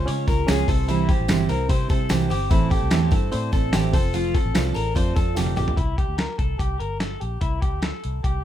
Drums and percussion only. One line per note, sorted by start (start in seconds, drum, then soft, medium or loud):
0.08 open hi-hat medium
0.28 kick medium
0.28 open hi-hat medium
0.28 tambourine medium
0.48 snare loud
0.48 open hi-hat loud
0.48 tambourine loud
0.68 kick loud
0.68 open hi-hat medium
0.68 tambourine medium
0.89 open hi-hat medium
0.89 tambourine soft
1.09 kick loud
1.09 open hi-hat medium
1.09 tambourine soft
1.28 snare loud
1.28 open hi-hat medium
1.28 tambourine medium
1.49 open hi-hat medium
1.49 tambourine medium
1.69 kick loud
1.69 open hi-hat medium
1.69 tambourine soft
1.89 kick medium
1.89 open hi-hat medium
1.89 tambourine medium
2.09 snare loud
2.09 open hi-hat loud
2.09 tambourine loud
2.30 open hi-hat medium
2.30 tambourine medium
2.50 kick loud
2.50 open hi-hat medium
2.50 tambourine medium
2.71 kick medium
2.71 open hi-hat medium
2.71 tambourine soft
2.91 snare loud
2.91 open hi-hat medium
2.91 tambourine medium
3.11 kick loud
3.11 open hi-hat medium
3.11 tambourine medium
3.32 open hi-hat medium
3.32 tambourine soft
3.52 kick medium
3.52 open hi-hat medium
3.52 tambourine medium
3.73 snare loud
3.73 open hi-hat loud
3.73 tambourine medium
3.93 kick loud
3.93 open hi-hat medium
3.93 tambourine medium
4.14 open hi-hat medium
4.14 tambourine soft
4.35 kick medium
4.35 open hi-hat medium
4.35 tambourine soft
4.55 snare loud
4.55 open hi-hat medium
4.55 tambourine loud
4.74 open hi-hat medium
4.74 tambourine medium
4.95 kick loud
4.95 open hi-hat medium
4.95 tambourine soft
5.16 kick medium
5.16 open hi-hat medium
5.16 tambourine medium
5.36 snare medium
5.36 open hi-hat loud
5.36 tambourine loud
5.47 high tom medium
5.56 mid tom loud
5.56 open hi-hat medium
5.56 tambourine medium
5.68 floor tom loud
5.77 kick loud
5.77 closed hi-hat medium
5.98 kick medium
5.98 closed hi-hat medium
6.18 snare loud
6.18 closed hi-hat medium
6.39 kick medium
6.39 closed hi-hat medium
6.59 kick medium
6.59 closed hi-hat medium
6.80 closed hi-hat medium
7.00 snare loud
7.00 closed hi-hat medium
7.21 closed hi-hat medium
7.41 kick medium
7.41 closed hi-hat medium
7.62 kick medium
7.62 closed hi-hat medium
7.82 snare loud
7.82 closed hi-hat medium
8.04 closed hi-hat medium
8.24 kick medium
8.24 closed hi-hat medium